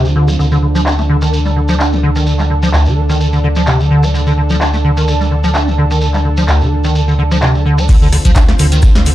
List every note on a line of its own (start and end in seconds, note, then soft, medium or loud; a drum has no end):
0.00 0.37 D2 medium
0.00 7.85 D3 medium
0.00 0.35 C4 medium
0.00 0.38 F4 medium
0.05 0.14 D3 medium
0.05 shekere soft
0.16 0.30 D3 medium
0.28 0.34 G3 medium
0.28 closed hi-hat medium
0.28 shekere medium
0.39 7.87 D2 medium
0.39 0.46 D3 medium
0.39 7.85 D4 medium
0.39 7.88 A4 medium
0.39 closed hi-hat soft
0.39 shekere medium
0.51 0.58 D3 loud
0.51 shekere soft
0.62 0.67 D3 medium
0.75 0.81 F3 medium
0.75 closed hi-hat medium
0.75 shekere medium
0.86 0.93 D4 medium
0.86 clap loud
0.86 closed hi-hat soft
0.86 shekere medium
0.98 1.02 A3 medium
0.98 shekere soft
1.09 1.16 D3 loud
1.22 1.34 D#3 medium
1.22 closed hi-hat medium
1.22 shekere medium
1.33 1.40 D3 medium
1.33 closed hi-hat soft
1.33 shekere medium
1.45 1.51 G3 medium
1.45 shekere soft
1.56 1.60 D3 medium
1.68 1.75 F3 medium
1.68 closed hi-hat medium
1.68 shekere medium
1.80 1.94 D4 medium
1.80 clap loud
1.80 closed hi-hat soft
1.80 shekere medium
1.92 1.98 D3 medium
1.92 shekere soft
2.03 2.10 D3 loud
2.16 2.28 D#3 medium
2.16 closed hi-hat medium
2.16 shekere medium
2.27 2.34 D3 medium
2.27 closed hi-hat soft
2.27 shekere medium
2.39 2.45 G3 medium
2.39 clap soft
2.39 shekere soft
2.50 2.54 D3 medium
2.63 2.69 F3 medium
2.63 closed hi-hat medium
2.63 shekere medium
2.74 2.88 D2 medium
2.74 clap loud
2.74 closed hi-hat soft
2.74 shekere medium
2.86 2.98 D3 medium
2.86 shekere soft
2.97 3.01 D#3 loud
3.09 3.22 D#3 medium
3.09 closed hi-hat medium
3.09 shekere medium
3.20 3.27 D3 medium
3.20 closed hi-hat soft
3.20 shekere medium
3.33 3.39 D3 medium
3.33 shekere soft
3.44 3.48 D3 loud
3.56 3.62 F3 medium
3.56 closed hi-hat medium
3.56 shekere medium
3.67 3.81 C3 medium
3.67 clap loud
3.67 closed hi-hat soft
3.67 shekere medium
3.80 3.89 D3 medium
3.80 shekere soft
3.91 4.05 D3 loud
4.03 4.09 G3 medium
4.03 closed hi-hat medium
4.03 shekere medium
4.14 4.21 D3 medium
4.14 closed hi-hat soft
4.14 shekere medium
4.27 4.33 D3 medium
4.27 shekere soft
4.38 4.42 D3 medium
4.50 4.56 F3 loud
4.50 closed hi-hat medium
4.50 shekere medium
4.61 4.68 D4 medium
4.61 clap loud
4.61 closed hi-hat soft
4.61 shekere medium
4.73 4.77 A3 medium
4.73 shekere soft
4.84 4.91 D3 loud
4.97 5.09 D#3 medium
4.97 closed hi-hat medium
4.97 shekere medium
5.08 5.15 D3 medium
5.08 closed hi-hat soft
5.08 shekere medium
5.21 5.26 G3 medium
5.21 shekere soft
5.31 5.35 D3 medium
5.44 5.50 F3 loud
5.44 closed hi-hat medium
5.44 shekere medium
5.54 5.69 D4 medium
5.54 clap loud
5.54 closed hi-hat soft
5.54 shekere medium
5.67 5.73 D3 medium
5.67 shekere soft
5.78 5.85 D3 loud
5.91 6.03 D#3 medium
5.91 closed hi-hat medium
5.91 shekere medium
6.01 6.09 D3 medium
6.01 closed hi-hat medium
6.01 shekere medium
6.14 6.20 G3 medium
6.14 clap soft
6.14 shekere soft
6.25 6.29 D3 medium
6.37 6.44 F3 loud
6.37 closed hi-hat medium
6.37 shekere medium
6.48 6.63 D2 loud
6.48 clap loud
6.48 closed hi-hat soft
6.48 shekere medium
6.61 6.73 D3 medium
6.61 shekere soft
6.72 6.76 D#3 loud
6.84 6.97 D#3 medium
6.84 closed hi-hat medium
6.84 shekere medium
6.95 7.02 D3 medium
6.95 closed hi-hat medium
6.95 shekere medium
7.08 7.14 D3 medium
7.08 shekere soft
7.19 7.23 D3 loud
7.31 7.37 F3 loud
7.31 closed hi-hat medium
7.31 shekere medium
7.42 7.56 C3 loud
7.42 clap loud
7.42 closed hi-hat medium
7.42 shekere medium
7.55 7.64 D3 medium
7.55 shekere soft
7.66 7.80 D3 loud
7.78 7.84 G3 medium
7.78 closed hi-hat medium
7.78 shekere medium
7.89 8.19 D2 loud
7.89 9.15 D3 medium
7.89 7.96 D3 medium
7.89 9.15 C4 medium
7.89 9.15 F4 loud
7.89 kick loud
7.89 closed hi-hat medium
7.89 crash loud
7.89 shaker medium
7.89 shekere medium
8.02 8.08 D3 loud
8.02 shekere soft
8.12 8.17 D3 medium
8.12 cross-stick medium
8.12 open hi-hat loud
8.12 shaker medium
8.25 8.54 D2 medium
8.25 8.31 F3 loud
8.25 kick medium
8.25 closed hi-hat medium
8.25 shekere medium
8.36 8.43 D4 medium
8.36 kick loud
8.36 snare loud
8.36 clap loud
8.36 closed hi-hat medium
8.36 shekere medium
8.36 shaker medium
8.48 8.52 A3 medium
8.48 cross-stick medium
8.48 snare medium
8.48 shekere soft
8.59 8.89 D2 medium
8.59 8.66 D3 loud
8.59 open hi-hat loud
8.59 shaker medium
8.72 8.84 D#3 medium
8.72 closed hi-hat medium
8.72 shekere medium
8.82 8.90 D3 medium
8.82 kick loud
8.82 cross-stick medium
8.82 closed hi-hat medium
8.82 shaker medium
8.82 shekere medium
8.95 9.15 D2 medium
8.95 9.01 G3 medium
8.95 snare medium
8.95 shekere soft
9.06 9.10 D3 medium
9.06 open hi-hat loud
9.06 shaker medium